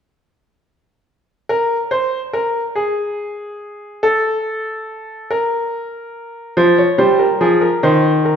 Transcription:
1.49 1.76 A#4 medium
1.91 2.18 C5 medium
2.33 2.60 A#4 medium
2.75 4.00 G#4 medium
4.03 5.27 A4 medium
5.31 6.53 A#4 medium
6.57 6.83 F3 medium
6.57 6.77 C5 medium
6.78 6.98 C#5 medium
6.98 7.24 G3 medium
6.98 7.19 C5 medium
7.19 7.40 A#4 medium
7.41 7.67 F3 medium
7.41 7.61 G#4 medium
7.61 7.82 A#4 medium
7.83 8.36 D#3 medium
7.83 8.09 C5 medium
8.25 8.36 A#4 medium

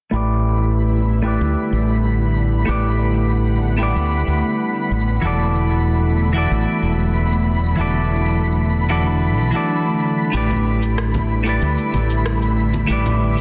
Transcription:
0.11 1.37 A1 medium
0.11 5.20 D3 medium
0.11 5.20 G3 medium
0.11 1.20 A3 medium
0.11 13.41 A3 medium
0.11 12.86 B3 medium
0.11 1.21 E4 medium
0.11 2.66 E4 medium
0.11 1.21 G4 medium
0.11 1.22 B4 medium
0.11 13.41 B5 medium
0.16 1.23 D5 medium
1.22 2.63 A3 medium
1.22 2.64 E4 medium
1.22 2.64 G4 medium
1.22 2.65 B4 medium
1.28 2.66 D5 medium
1.41 1.54 D2 medium
1.73 2.64 A1 medium
2.65 3.92 A1 medium
2.65 3.75 A3 medium
2.65 3.76 E4 medium
2.65 3.76 G4 medium
2.65 5.21 F#5 medium
2.69 3.77 B4 medium
2.69 3.78 D5 medium
3.77 5.19 A3 medium
3.77 5.19 E4 medium
3.77 5.20 G4 medium
3.81 5.21 B4 medium
3.81 5.21 D5 medium
3.96 4.23 D2 medium
4.28 4.41 D2 medium
4.91 5.19 A1 medium
5.21 6.47 E1 medium
5.21 10.30 D3 medium
5.21 6.31 E3 medium
5.21 10.30 F#3 medium
5.21 6.31 E4 medium
5.21 7.76 E4 medium
5.21 6.32 F#4 medium
5.21 6.33 A4 medium
5.27 6.33 D5 medium
6.33 7.74 E3 medium
6.33 7.75 E4 medium
6.33 7.75 F#4 medium
6.33 7.76 A4 medium
6.38 7.76 D5 medium
6.51 6.65 A1 medium
6.83 7.75 E1 medium
7.76 9.38 E1 medium
7.76 8.85 E3 medium
7.76 10.31 D4 medium
7.76 8.86 E4 medium
7.76 8.87 F#4 medium
7.80 8.87 A4 medium
7.80 8.88 D5 medium
8.89 9.50 E3 medium
8.89 9.51 E4 medium
8.89 9.51 F#4 medium
8.89 9.51 A4 medium
8.89 9.52 D5 medium
9.38 9.52 B1 medium
9.51 10.29 E3 medium
9.51 10.29 E4 medium
9.51 10.30 F#4 medium
9.55 10.31 A4 medium
9.55 10.31 D5 medium
10.32 11.58 A1 medium
10.32 13.41 D3 medium
10.32 13.41 G3 medium
10.32 11.41 A3 medium
10.32 11.42 E4 medium
10.32 13.41 E4 medium
10.32 11.42 G4 medium
10.32 11.43 B4 medium
10.32 cabasa soft
10.37 11.44 D5 medium
10.50 low conga medium
10.50 cabasa soft
10.83 cabasa medium
10.98 cross-stick medium
10.98 cabasa soft
11.14 high conga medium
11.14 low conga medium
11.14 cabasa soft
11.44 12.85 A3 medium
11.44 12.85 E4 medium
11.44 12.86 G4 medium
11.44 12.87 B4 medium
11.44 cabasa medium
11.49 12.87 D5 medium
11.62 11.76 D2 medium
11.62 cabasa soft
11.78 cabasa soft
11.94 12.86 A1 medium
11.94 high conga medium
12.10 cabasa medium
12.26 cross-stick medium
12.26 cabasa medium
12.42 cabasa soft
12.74 high conga medium
12.74 cabasa medium
12.87 13.41 A1 medium
12.87 13.41 A3 medium
12.87 13.41 E4 medium
12.87 13.41 G4 medium
12.87 13.41 B4 medium
12.87 cabasa soft
12.92 13.41 D5 medium
13.06 low conga medium
13.06 cabasa soft

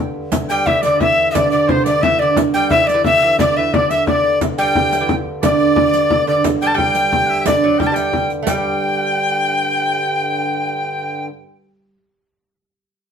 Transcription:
0.00 0.31 G2 medium
0.00 0.31 D3 medium
0.15 frame drum soft
0.32 4.39 G2 medium
0.32 4.39 D3 medium
0.32 riq medium
0.32 frame drum medium
0.49 0.68 G3 medium
0.49 0.65 G5 loud
0.49 0.68 G5 loud
0.49 riq soft
0.49 frame drum soft
0.66 0.84 E3 medium
0.66 0.83 E5 medium
0.66 0.84 E5 medium
0.66 frame drum medium
0.82 1.01 D3 medium
0.82 1.01 D5 medium
0.82 1.00 D5 medium
0.82 riq medium
1.00 1.35 E3 medium
1.00 1.35 E5 medium
1.00 1.29 E5 loud
1.00 riq soft
1.00 frame drum medium
1.18 frame drum soft
1.31 1.50 D5 medium
1.31 1.51 D5 loud
1.31 1.36 E5 medium
1.35 1.51 D3 medium
1.35 riq medium
1.35 frame drum medium
1.51 1.70 D3 medium
1.51 1.70 D5 medium
1.51 1.71 D5 medium
1.51 riq soft
1.51 frame drum soft
1.68 1.87 C3 medium
1.68 1.85 C5 medium
1.68 1.86 C5 loud
1.68 frame drum medium
1.84 2.04 D3 medium
1.84 2.03 D5 medium
1.84 2.05 D5 loud
1.84 riq medium
2.02 2.21 E3 medium
2.02 2.21 E5 medium
2.02 2.21 E5 loud
2.02 riq soft
2.02 frame drum medium
2.19 2.37 D3 medium
2.19 2.37 D5 loud
2.19 2.37 D5 medium
2.19 frame drum soft
2.36 riq medium
2.36 frame drum medium
2.54 2.72 G3 medium
2.54 2.70 G5 loud
2.54 2.73 G5 loud
2.54 riq soft
2.54 frame drum soft
2.70 2.82 E3 medium
2.70 2.89 E5 loud
2.70 2.90 E5 medium
2.70 frame drum medium
2.83 2.93 E3 medium
2.83 3.04 D5 loud
2.88 3.05 D5 medium
2.88 riq medium
2.94 3.05 E3 medium
3.04 3.21 E3 medium
3.04 3.37 E5 loud
3.04 3.37 E5 medium
3.04 riq soft
3.04 frame drum medium
3.22 3.40 E3 medium
3.22 frame drum soft
3.39 3.57 D3 medium
3.39 3.58 D5 medium
3.39 3.55 D5 medium
3.39 riq medium
3.39 frame drum medium
3.57 3.74 E3 medium
3.57 3.75 E5 medium
3.57 3.76 E5 medium
3.74 4.07 D3 medium
3.74 3.90 D5 loud
3.74 3.92 D5 medium
3.74 riq soft
3.74 frame drum medium
3.90 4.07 E5 medium
3.90 4.06 E5 loud
3.90 riq medium
4.07 4.40 D3 medium
4.07 4.39 D5 loud
4.07 4.39 D5 medium
4.07 frame drum medium
4.41 8.46 G2 medium
4.41 8.46 D3 medium
4.41 riq medium
4.41 frame drum medium
4.58 5.03 G3 loud
4.58 5.15 G5 loud
4.58 riq soft
4.58 frame drum soft
4.75 frame drum medium
4.93 riq medium
5.01 5.17 E3 medium
5.09 riq soft
5.09 frame drum medium
5.26 frame drum soft
5.42 6.26 D3 medium
5.42 6.23 D5 medium
5.42 6.24 D5 loud
5.42 riq medium
5.42 frame drum medium
5.60 riq soft
5.60 frame drum soft
5.76 frame drum medium
5.94 riq medium
6.10 riq soft
6.10 frame drum medium
6.27 6.43 D3 medium
6.27 6.44 D5 medium
6.27 frame drum soft
6.44 riq medium
6.44 frame drum medium
6.61 6.73 G3 medium
6.61 6.73 G5 medium
6.61 6.68 G5 loud
6.61 riq soft
6.61 frame drum soft
6.67 6.77 A5 medium
6.74 7.48 G3 medium
6.74 7.28 G5 medium
6.74 7.46 G5 loud
6.74 frame drum medium
6.95 riq medium
7.12 riq soft
7.12 frame drum medium
7.26 7.40 E5 medium
7.26 7.31 F#5 medium
7.26 frame drum soft
7.41 7.48 E5 medium
7.46 7.64 D3 medium
7.46 7.80 D5 medium
7.46 7.78 D5 medium
7.46 riq medium
7.46 frame drum medium
7.64 7.79 F#3 medium
7.79 7.91 G3 medium
7.79 7.92 G5 medium
7.79 7.88 G5 medium
7.79 frame drum medium
7.87 7.96 A5 medium
7.92 8.28 G3 medium
7.92 8.28 G5 medium
7.92 8.31 G5 medium
7.96 riq medium
8.13 frame drum medium
8.30 riq soft
8.43 8.48 A3 medium
8.47 11.29 G2 medium
8.47 11.29 D3 medium
8.47 11.97 G3 loud
8.47 11.26 G5 loud
8.47 11.26 G5 medium
8.47 riq loud
8.47 frame drum medium

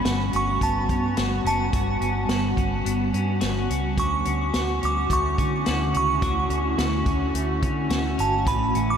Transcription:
0.00 1.72 G2 medium
0.00 3.94 G3 medium
0.00 3.94 B3 medium
0.00 0.33 C#4 soft
0.00 3.94 F#4 medium
0.00 0.38 B5 medium
0.05 0.30 G1 medium
0.05 1.17 F#4 medium
0.05 snare loud
0.05 closed hi-hat medium
0.33 0.58 G1 medium
0.33 0.88 C#4 medium
0.33 0.64 C#6 medium
0.33 closed hi-hat soft
0.61 0.91 G1 medium
0.61 2.84 B3 soft
0.61 1.42 A5 medium
0.61 kick medium
0.61 closed hi-hat medium
0.89 1.14 G2 medium
0.89 1.45 C#4 medium
0.89 kick medium
0.89 closed hi-hat soft
1.17 1.42 G1 medium
1.17 1.74 F#4 medium
1.17 snare medium
1.17 closed hi-hat medium
1.44 1.70 F#1 medium
1.44 2.01 C#4 medium
1.44 3.67 A5 medium
1.44 closed hi-hat soft
1.73 1.98 G1 loud
1.73 3.98 G2 medium
1.73 2.29 F#4 soft
1.73 kick loud
1.73 closed hi-hat medium
2.01 2.26 G1 medium
2.01 2.57 C#4 medium
2.01 closed hi-hat soft
2.29 2.54 G1 medium
2.29 3.40 F#4 medium
2.29 snare loud
2.29 closed hi-hat medium
2.57 2.82 G1 medium
2.57 3.13 C#4 medium
2.57 kick medium
2.57 closed hi-hat soft
2.85 3.10 G1 medium
2.85 4.03 B3 medium
2.85 closed hi-hat medium
3.14 3.38 G2 medium
3.14 3.69 C#4 medium
3.14 closed hi-hat soft
3.41 3.66 G1 medium
3.41 3.98 F#4 medium
3.41 snare medium
3.41 closed hi-hat medium
3.70 3.95 C#2 medium
3.70 4.25 C#4 medium
3.70 closed hi-hat soft
3.97 4.22 D2 medium
3.97 6.21 D3 medium
3.97 8.43 D3 medium
3.97 8.97 A3 medium
3.97 8.97 C#4 medium
3.97 8.43 E4 medium
3.97 8.43 F#4 medium
3.97 4.52 F#4 medium
3.97 4.85 C#6 medium
3.97 kick loud
3.97 closed hi-hat medium
4.25 4.51 D2 medium
4.25 4.81 C#4 medium
4.25 closed hi-hat soft
4.53 4.79 D2 medium
4.53 5.65 F#4 medium
4.53 snare loud
4.53 closed hi-hat medium
4.82 5.07 D2 medium
4.82 5.38 C#4 soft
4.82 5.12 D6 medium
4.82 closed hi-hat soft
5.10 5.35 D2 medium
5.10 7.34 A3 soft
5.10 5.96 C#6 medium
5.10 kick medium
5.10 closed hi-hat medium
5.38 5.63 D3 medium
5.38 5.93 C#4 medium
5.38 kick medium
5.38 closed hi-hat soft
5.66 5.91 D2 medium
5.66 6.22 F#4 medium
5.66 snare medium
5.66 closed hi-hat soft
5.94 6.19 C#2 medium
5.94 6.50 C#4 medium
5.94 8.26 C#6 medium
5.94 closed hi-hat soft
6.22 6.47 D2 medium
6.22 8.46 D3 medium
6.22 6.77 F#4 medium
6.22 kick loud
6.22 closed hi-hat medium
6.50 6.74 D2 medium
6.50 7.06 C#4 soft
6.50 closed hi-hat soft
6.78 7.03 D2 loud
6.78 7.89 F#4 medium
6.78 snare loud
6.78 closed hi-hat medium
7.06 7.31 D2 medium
7.06 7.62 C#4 medium
7.06 kick medium
7.06 closed hi-hat soft
7.34 7.64 D2 medium
7.34 8.97 A3 medium
7.34 closed hi-hat medium
7.62 7.87 D3 medium
7.62 8.17 C#4 medium
7.62 kick medium
7.62 closed hi-hat soft
7.90 8.15 D2 medium
7.90 8.46 F#4 medium
7.90 snare medium
7.90 closed hi-hat medium
8.18 8.47 G1 medium
8.18 8.75 C#4 medium
8.18 8.48 A5 medium
8.18 closed hi-hat soft
8.45 8.71 A1 loud
8.45 8.97 A2 medium
8.45 8.97 G3 medium
8.45 8.97 B4 medium
8.45 8.90 B5 medium
8.45 kick loud
8.45 closed hi-hat medium
8.75 8.97 A1 medium
8.75 8.97 C#4 soft
8.75 closed hi-hat soft
8.90 8.97 D6 medium

